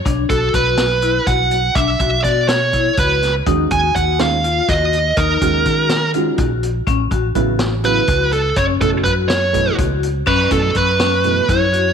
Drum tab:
CC |-------|-------|-------|-------|
HH |xxxxxxx|xxxxxxx|xxxxxxx|xxxxxxx|
SD |---o---|---o--o|---o-o-|---o---|
BD |ooo--o-|ooo-oo-|ooo--o-|ooo--o-|

CC |-------|-------|x------|
HH |xxxxxxx|xxxxxxx|-xxxxxx|
SD |---o---|---o---|---o---|
BD |ooo--o-|ooo-oo-|ooo--o-|